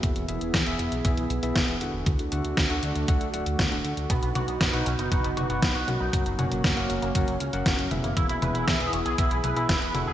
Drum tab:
HH |xxxxxxxxxxxxxxx-|xxxxxxxxxxxxxxxx|xxxxxxxxxxxxxxx-|xxxxxxxxxxxxxxxx|
SD |----o-------o---|----o-------o---|----o-------o---|----o-------o---|
T1 |----------------|----------------|--o-------o---o-|--o-----------o-|
BD |o---o---o---o---|o---o---o---o---|o---o---o---o---|o---o---o---o---|

HH |xxxxxxxxxxxxxxx-|
SD |----o-------o---|
T1 |--o-------o---o-|
BD |o---o---o---o---|